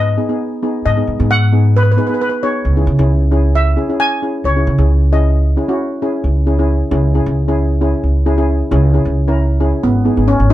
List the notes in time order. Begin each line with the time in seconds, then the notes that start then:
Already playing: G#2 D#5
0.17 B3 D#4 G#4
0.29 B3 D#4 G#4
0.63 B3 D#4 G#4
0.85 G#2 D#5
0.97 B3 D#4 G#4
1.07 G#2
1.19 G#2 B3 D#4 G#4
1.31 F#5
1.53 B3 D#4 G#4
1.77 B4
1.83 B4
1.92 B4
1.97 B3 D#4 G#4 B4
2.07 B3 D#4 G#4 B4
2.14 B4
2.21 B4
2.30 B4
2.43 B3 D#4 G#4 C#5
2.65 C#2
2.77 C#4 E4 G#4
2.87 C#3
2.99 C#2 C#4 E4 G#4
3.31 C#4 E4 G#4
3.55 E5
3.77 C#4 E4 G#4
3.89 C#4 E4 G#4
4.00 G#5
4.22 C#4 E4 G#4
4.44 C#2 C#5
4.56 C#4 E4 G#4
4.67 C#3
4.78 C#2 C#4 E4 G#4
5.12 C#4 E4 G#4 D#5
5.57 C#4 E4 G#4
5.68 C#4 E4 F#4
6.02 C#4 E4 G#4
6.24 C#2
6.47 C#4 E4 G#4
6.59 C#4 E4 G#4
6.91 C#2 C#4 E4 G#4
7.14 C#4 E4 G#4
7.26 C#2
7.48 C#4 E4 G#4
7.81 C#4 E4 G#4
8.03 C#2
8.26 C#4 E4 G#4
8.37 C#4 E4 G#4
8.71 C#2 C#4 E4 G#4
8.94 C#4 E4 G#4
9.05 C#2
9.28 C#4 E4 A#4
9.60 C#4 E4 G#4
9.83 G#1 B3
10.05 B3 D#4 G#4
10.17 G#1 B3 D#4 G#4
10.28 C#4
10.40 G#1
10.50 B3 D#4